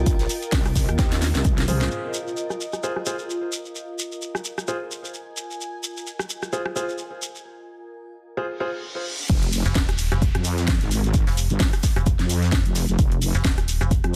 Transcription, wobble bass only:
0.53 C2
0.89 D#2
1.35 C2
1.68 C2
9.30 F1
10.35 F2
10.81 G#1
11.50 G1
12.19 F2
12.66 F1
12.89 F1
12.99 F1
14.04 F2

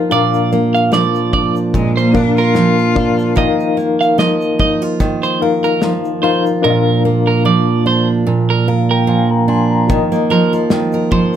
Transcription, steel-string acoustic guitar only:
Already playing: D#3 F3 A#3 F4 A#4
0.11 A#2
0.52 A#3
0.92 F3
1.34 D4
1.75 A#2
2.14 A#4
2.56 F3
2.96 D4
3.36 D#3
3.77 A#3
4.18 F3
4.59 D#4
4.82 F4
5.00 D#3
5.42 A#4
5.83 F3
6.24 F4
6.64 A#2
7.05 A#3
7.45 F3
7.86 D4
8.27 A#2
8.68 A#4
9.07 F3
9.48 D4
9.90 D#3
10.12 A#3
10.30 F3
10.53 F4
10.71 D#3
10.94 A#4
11.11 F3

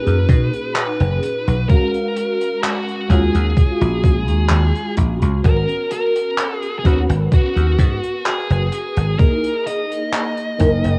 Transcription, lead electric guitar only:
Already playing: B4
0.76 B4
1.69 A#4
2.63 F#4
3.10 G#4
5.45 A#4
5.92 A#4
6.55 G#4
6.79 G#4
6.86 F#4
7.34 F#4
8.26 G#4
9.19 A#4
9.67 D#5

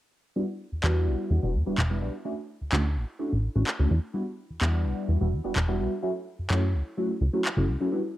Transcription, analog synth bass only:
0.72 E2
0.83 E2
1.07 B1
1.31 E2
1.43 E1
1.54 E2
1.67 E1
1.78 E1
2.02 B1
2.61 D2
2.72 D2
2.96 A1
3.32 A1
3.56 A1
3.79 D2
3.91 E2
4.50 E2
4.62 E2
4.85 B1
5.09 E2
5.21 E1
5.32 E2
5.45 E1
5.56 E1
5.79 B1
6.39 F#2
6.50 F#2
6.74 C#2
7.21 C#2
7.57 F#1
7.68 C#2

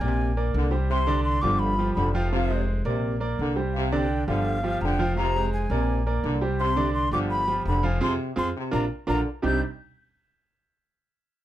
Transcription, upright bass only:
0.01 A#1
0.54 C2
1.43 G1
1.97 F1
2.85 A#1
3.39 C2
4.28 G1
4.81 F1
5.70 A#1
6.24 C2
7.11 G1
7.65 F1
8.01 F2
8.37 F2
8.73 A#1
9.08 A#1
9.44 C2

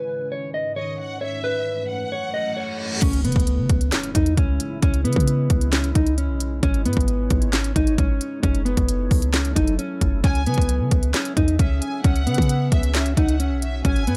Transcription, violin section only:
0.76 D#5
0.99 F#5
1.22 E5
1.89 F#5
10.24 G#5
11.59 E5
11.82 G#5
12.04 F#5
12.72 E5
13.17 F#5
13.62 E5
13.85 G#5

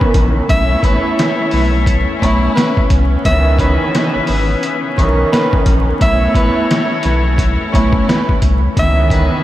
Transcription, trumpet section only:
Already playing: G#4 B4 E5
0.49 A4 C#5 E5
3.25 G#4 B4 E5
6.01 F#4 A4 C#5
8.77 G#4 B4 E5

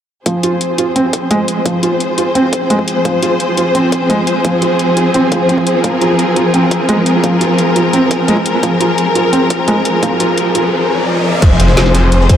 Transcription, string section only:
0.26 F3 C4 G#4 C5
5.84 A#4
11.42 F3 C4 G#4 C5

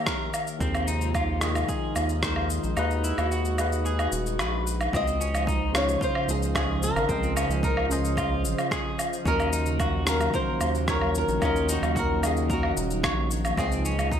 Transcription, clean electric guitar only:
0.06 A#4
0.61 C4
0.87 D#4
1.15 F4
1.69 G#4
2.23 C5
2.77 D#4
3.04 E4
3.31 F#4
3.86 G#4
4.40 B4
4.94 C4
5.21 C#4
5.47 D#4
6.01 F4
6.55 G#4
7.09 C4
7.36 C#4
7.64 D#4
8.17 F4
8.71 G#4
9.26 C#4
9.53 D#4
9.80 F#4
10.34 A#4
10.88 C#5
11.42 C#4
11.69 D#4
11.95 F#4
12.50 A#4
13.04 C#5
13.58 C4
13.85 C#4
14.12 D#4

